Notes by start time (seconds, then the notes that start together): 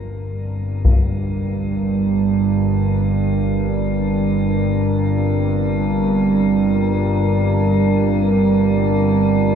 Already playing: G1 G2 G3 C4 D4 F4 A#4
0.85 taiko